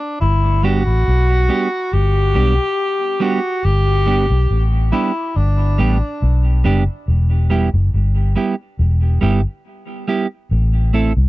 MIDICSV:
0, 0, Header, 1, 4, 480
1, 0, Start_track
1, 0, Key_signature, 1, "major"
1, 0, Tempo, 858001
1, 114, Time_signature, 4, 2, 24, 8
1, 6315, End_track
2, 0, Start_track
2, 0, Title_t, "Tenor saxophone"
2, 0, Program_c, 0, 66
2, 0, Note_on_c, 0, 62, 89
2, 99, Note_off_c, 0, 62, 0
2, 116, Note_on_c, 0, 64, 95
2, 358, Note_on_c, 0, 66, 109
2, 366, Note_off_c, 0, 64, 0
2, 1081, Note_on_c, 0, 67, 111
2, 1089, Note_off_c, 0, 66, 0
2, 1800, Note_on_c, 0, 66, 102
2, 1808, Note_off_c, 0, 67, 0
2, 2038, Note_on_c, 0, 67, 110
2, 2047, Note_off_c, 0, 66, 0
2, 2609, Note_off_c, 0, 67, 0
2, 2754, Note_on_c, 0, 64, 91
2, 2999, Note_on_c, 0, 62, 83
2, 3008, Note_off_c, 0, 64, 0
2, 3717, Note_off_c, 0, 62, 0
2, 6315, End_track
3, 0, Start_track
3, 0, Title_t, "Clean electric guitar"
3, 0, Program_c, 1, 27
3, 353, Note_on_c, 1, 55, 80
3, 357, Note_on_c, 1, 59, 79
3, 361, Note_on_c, 1, 62, 95
3, 362, Note_on_c, 1, 67, 98
3, 455, Note_off_c, 1, 55, 0
3, 457, Note_off_c, 1, 59, 0
3, 459, Note_off_c, 1, 62, 0
3, 460, Note_off_c, 1, 67, 0
3, 831, Note_on_c, 1, 55, 69
3, 835, Note_on_c, 1, 59, 77
3, 838, Note_on_c, 1, 62, 82
3, 839, Note_on_c, 1, 67, 82
3, 934, Note_off_c, 1, 55, 0
3, 936, Note_off_c, 1, 59, 0
3, 937, Note_off_c, 1, 62, 0
3, 938, Note_off_c, 1, 67, 0
3, 1310, Note_on_c, 1, 55, 77
3, 1315, Note_on_c, 1, 59, 76
3, 1317, Note_on_c, 1, 62, 82
3, 1319, Note_on_c, 1, 67, 88
3, 1414, Note_off_c, 1, 55, 0
3, 1416, Note_off_c, 1, 59, 0
3, 1417, Note_off_c, 1, 62, 0
3, 1418, Note_off_c, 1, 67, 0
3, 1789, Note_on_c, 1, 55, 92
3, 1794, Note_on_c, 1, 59, 97
3, 1797, Note_on_c, 1, 62, 98
3, 1799, Note_on_c, 1, 67, 103
3, 1893, Note_off_c, 1, 55, 0
3, 1895, Note_off_c, 1, 59, 0
3, 1897, Note_off_c, 1, 62, 0
3, 1898, Note_off_c, 1, 67, 0
3, 2271, Note_on_c, 1, 55, 80
3, 2276, Note_on_c, 1, 59, 87
3, 2278, Note_on_c, 1, 62, 85
3, 2280, Note_on_c, 1, 67, 87
3, 2374, Note_off_c, 1, 55, 0
3, 2377, Note_off_c, 1, 59, 0
3, 2377, Note_off_c, 1, 62, 0
3, 2379, Note_off_c, 1, 67, 0
3, 2752, Note_on_c, 1, 55, 70
3, 2756, Note_on_c, 1, 59, 82
3, 2758, Note_on_c, 1, 62, 88
3, 2763, Note_on_c, 1, 67, 79
3, 2855, Note_off_c, 1, 55, 0
3, 2856, Note_off_c, 1, 59, 0
3, 2858, Note_off_c, 1, 62, 0
3, 2860, Note_off_c, 1, 67, 0
3, 3235, Note_on_c, 1, 55, 83
3, 3239, Note_on_c, 1, 59, 90
3, 3241, Note_on_c, 1, 62, 91
3, 3244, Note_on_c, 1, 67, 89
3, 3336, Note_off_c, 1, 55, 0
3, 3338, Note_off_c, 1, 59, 0
3, 3339, Note_off_c, 1, 62, 0
3, 3341, Note_off_c, 1, 67, 0
3, 3715, Note_on_c, 1, 55, 86
3, 3718, Note_on_c, 1, 59, 87
3, 3721, Note_on_c, 1, 62, 106
3, 3725, Note_on_c, 1, 67, 103
3, 3816, Note_off_c, 1, 55, 0
3, 3818, Note_off_c, 1, 59, 0
3, 3819, Note_off_c, 1, 62, 0
3, 3821, Note_off_c, 1, 67, 0
3, 4195, Note_on_c, 1, 55, 85
3, 4197, Note_on_c, 1, 59, 81
3, 4202, Note_on_c, 1, 64, 79
3, 4204, Note_on_c, 1, 67, 88
3, 4296, Note_off_c, 1, 55, 0
3, 4297, Note_off_c, 1, 59, 0
3, 4300, Note_off_c, 1, 64, 0
3, 4300, Note_off_c, 1, 67, 0
3, 4674, Note_on_c, 1, 55, 77
3, 4678, Note_on_c, 1, 59, 82
3, 4681, Note_on_c, 1, 64, 81
3, 4684, Note_on_c, 1, 67, 90
3, 4776, Note_off_c, 1, 55, 0
3, 4778, Note_off_c, 1, 59, 0
3, 4779, Note_off_c, 1, 64, 0
3, 4781, Note_off_c, 1, 67, 0
3, 5153, Note_on_c, 1, 55, 100
3, 5158, Note_on_c, 1, 59, 86
3, 5160, Note_on_c, 1, 64, 87
3, 5164, Note_on_c, 1, 67, 90
3, 5255, Note_off_c, 1, 55, 0
3, 5258, Note_off_c, 1, 59, 0
3, 5259, Note_off_c, 1, 64, 0
3, 5261, Note_off_c, 1, 67, 0
3, 5637, Note_on_c, 1, 55, 84
3, 5641, Note_on_c, 1, 59, 77
3, 5643, Note_on_c, 1, 64, 82
3, 5646, Note_on_c, 1, 67, 93
3, 5737, Note_off_c, 1, 55, 0
3, 5739, Note_off_c, 1, 59, 0
3, 5740, Note_off_c, 1, 64, 0
3, 5742, Note_off_c, 1, 67, 0
3, 6117, Note_on_c, 1, 57, 82
3, 6120, Note_on_c, 1, 60, 83
3, 6122, Note_on_c, 1, 64, 106
3, 6126, Note_on_c, 1, 69, 91
3, 6217, Note_off_c, 1, 57, 0
3, 6219, Note_off_c, 1, 60, 0
3, 6220, Note_off_c, 1, 64, 0
3, 6222, Note_off_c, 1, 69, 0
3, 6315, End_track
4, 0, Start_track
4, 0, Title_t, "Fingered electric bass"
4, 0, Program_c, 2, 33
4, 122, Note_on_c, 2, 31, 97
4, 465, Note_off_c, 2, 31, 0
4, 487, Note_on_c, 2, 33, 85
4, 592, Note_off_c, 2, 33, 0
4, 603, Note_on_c, 2, 35, 88
4, 826, Note_off_c, 2, 35, 0
4, 1081, Note_on_c, 2, 31, 91
4, 1306, Note_off_c, 2, 31, 0
4, 1321, Note_on_c, 2, 35, 84
4, 1437, Note_off_c, 2, 35, 0
4, 2040, Note_on_c, 2, 31, 103
4, 2385, Note_off_c, 2, 31, 0
4, 2407, Note_on_c, 2, 35, 91
4, 2512, Note_off_c, 2, 35, 0
4, 2521, Note_on_c, 2, 33, 85
4, 2745, Note_off_c, 2, 33, 0
4, 3000, Note_on_c, 2, 31, 83
4, 3225, Note_off_c, 2, 31, 0
4, 3240, Note_on_c, 2, 33, 84
4, 3357, Note_off_c, 2, 33, 0
4, 3481, Note_on_c, 2, 35, 97
4, 3706, Note_off_c, 2, 35, 0
4, 3720, Note_on_c, 2, 30, 90
4, 3837, Note_off_c, 2, 30, 0
4, 3961, Note_on_c, 2, 28, 96
4, 4305, Note_off_c, 2, 28, 0
4, 4328, Note_on_c, 2, 30, 95
4, 4432, Note_off_c, 2, 30, 0
4, 4442, Note_on_c, 2, 31, 97
4, 4666, Note_off_c, 2, 31, 0
4, 4919, Note_on_c, 2, 28, 93
4, 5144, Note_off_c, 2, 28, 0
4, 5162, Note_on_c, 2, 31, 93
4, 5278, Note_off_c, 2, 31, 0
4, 5881, Note_on_c, 2, 33, 101
4, 6225, Note_off_c, 2, 33, 0
4, 6247, Note_on_c, 2, 36, 93
4, 6315, Note_off_c, 2, 36, 0
4, 6315, End_track
0, 0, End_of_file